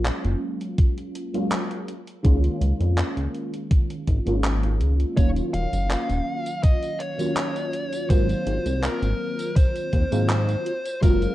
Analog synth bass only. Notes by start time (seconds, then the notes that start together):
Already playing: A#1
0.24 F#1
2.25 C#2
2.61 C#2
2.80 F2
3.17 C#2
4.08 G#1
4.26 G#1
4.63 G#1
4.80 C#2
5.17 D#1
5.54 D#1
5.73 F#1
6.10 D#1
8.10 G#1
8.46 G#1
8.66 C2
9.02 G#1
9.93 D#2
10.12 G#2
11.03 F#1